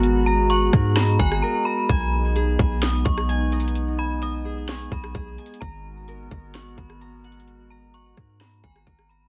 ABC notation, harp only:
X:1
M:4/4
L:1/8
Q:1/4=129
K:G#m
V:1 name="Harp"
[fa] a f A a f A a | g2 G g d2 g d- | d g d G g d G g | a2 A a f2 a f- |
f a f A a f A a |]